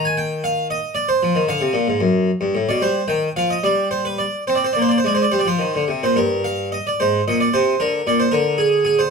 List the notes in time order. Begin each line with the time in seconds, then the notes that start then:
Already playing: D#3
0.05 G#5
0.17 G5
0.44 F5
0.70 D#5
0.95 D5
1.09 C5
1.23 F3
1.35 D#3
1.48 D3 F5
1.61 C3
1.73 A#2
1.88 G#2
2.00 F#2
2.41 G2
2.55 A2
2.69 B2 D5
2.82 G3 C5
3.08 D#3 G5
3.36 F3 F5
3.50 D#5
3.63 G3 D5
3.91 C5
4.05 B4
4.18 D5
4.47 C4 C5
4.55 D5
4.64 C5
4.73 A#3 D5
4.82 C5
4.89 D5
4.98 C5
5.04 G#3 D5
5.15 C5
5.22 D5
5.31 G3 C5
5.39 D5
5.46 F3 C5
5.59 D#3
5.75 D3
5.88 C3
6.03 A#2 C5
6.16 G2 A#4
6.44 F5
6.72 D#5
6.87 D5
7.00 G#2 C5
7.28 A#2 D#5
7.41 D5
7.53 C3 C5
7.80 D3 A#4
8.07 A#2 D5
8.20 C5
8.31 D3 A#4
8.58 G#4
8.85 G#4
8.99 C5